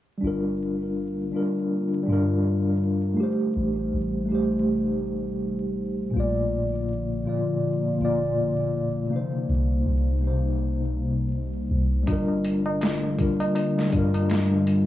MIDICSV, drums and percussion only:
0, 0, Header, 1, 3, 480
1, 0, Start_track
1, 0, Key_signature, -2, "minor"
1, 0, Tempo, 740741
1, 145, Time_signature, 4, 2, 24, 8
1, 9631, End_track
2, 0, Start_track
2, 0, Title_t, "Tabla"
2, 7823, Note_on_c, 9, 60, 54
2, 7888, Note_off_c, 9, 60, 0
2, 7959, Note_on_c, 9, 60, 34
2, 8023, Note_off_c, 9, 60, 0
2, 8201, Note_on_c, 9, 60, 70
2, 8266, Note_off_c, 9, 60, 0
2, 8301, Note_on_c, 9, 60, 54
2, 8366, Note_off_c, 9, 60, 0
2, 8444, Note_on_c, 9, 60, 36
2, 8509, Note_off_c, 9, 60, 0
2, 8683, Note_on_c, 9, 60, 70
2, 8748, Note_off_c, 9, 60, 0
2, 8781, Note_on_c, 9, 60, 58
2, 8846, Note_off_c, 9, 60, 0
2, 8926, Note_on_c, 9, 60, 34
2, 8991, Note_off_c, 9, 60, 0
2, 9163, Note_on_c, 9, 60, 77
2, 9228, Note_off_c, 9, 60, 0
2, 9258, Note_on_c, 9, 60, 55
2, 9322, Note_off_c, 9, 60, 0
2, 9400, Note_on_c, 9, 60, 30
2, 9465, Note_off_c, 9, 60, 0
2, 9631, End_track
3, 0, Start_track
3, 0, Title_t, "Drums"
3, 7823, Note_on_c, 9, 36, 92
3, 7823, Note_on_c, 9, 42, 75
3, 7888, Note_off_c, 9, 36, 0
3, 7888, Note_off_c, 9, 42, 0
3, 8065, Note_on_c, 9, 42, 56
3, 8129, Note_off_c, 9, 42, 0
3, 8304, Note_on_c, 9, 42, 70
3, 8314, Note_on_c, 9, 38, 93
3, 8369, Note_off_c, 9, 42, 0
3, 8379, Note_off_c, 9, 38, 0
3, 8544, Note_on_c, 9, 36, 89
3, 8544, Note_on_c, 9, 42, 62
3, 8609, Note_off_c, 9, 36, 0
3, 8609, Note_off_c, 9, 42, 0
3, 8684, Note_on_c, 9, 42, 39
3, 8749, Note_off_c, 9, 42, 0
3, 8784, Note_on_c, 9, 42, 75
3, 8849, Note_off_c, 9, 42, 0
3, 8934, Note_on_c, 9, 38, 35
3, 8999, Note_off_c, 9, 38, 0
3, 9023, Note_on_c, 9, 42, 57
3, 9024, Note_on_c, 9, 36, 78
3, 9088, Note_off_c, 9, 36, 0
3, 9088, Note_off_c, 9, 42, 0
3, 9164, Note_on_c, 9, 42, 41
3, 9229, Note_off_c, 9, 42, 0
3, 9264, Note_on_c, 9, 42, 78
3, 9273, Note_on_c, 9, 38, 94
3, 9328, Note_off_c, 9, 42, 0
3, 9338, Note_off_c, 9, 38, 0
3, 9505, Note_on_c, 9, 42, 57
3, 9570, Note_off_c, 9, 42, 0
3, 9631, End_track
0, 0, End_of_file